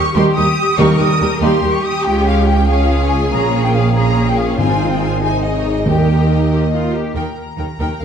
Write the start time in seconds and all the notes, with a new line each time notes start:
Already playing: G4 C#6
0.14 D#2 G3 C4 D#4 G4 C6
0.36 D#2 G3 D#4 G4 D#6
0.77 D#2 D#3 G3 A#3 D#4 G4 A#4 C#6
0.99 D#2 G3 D#4 G4 D#6
1.20 D#2 G3 G4 A#4
1.41 D#2 G3 A#3 D#4 G4 C6
1.62 D#2 G3 D#4 G4
1.73 C#6
1.83 D#6
2.04 C#2 G#3 C#4 F4 C#5 G5
2.26 F5
2.47 G5
2.67 G#3 C#4 F4 G#4 C#5 F5
3.09 G#5
3.30 A#1 A#3 C#4 F4 C#5 A#5
3.64 G5
3.73 F5
3.94 A#3 C#4 F4 C#5 A#5
4.26 G5
4.36 F5
4.58 G#1 G#2 C4 D#4 F4 G#4 C5 G#5
4.90 G5
4.99 G#5
5.21 C3 D#4 G#4 C5 G#5
5.43 D#5
5.54 C#5
5.86 D#2 D#3 A#3 D#4 G4 A#4 D#5 G5
6.52 G4
6.73 F4
6.94 G4
7.15 D#2 D#3 A#4 G5 A#5
7.58 D#2 D#3 A#4 G5
7.79 D#2 D#3 A#4 G5
8.00 D#2 D#3 A#4 F5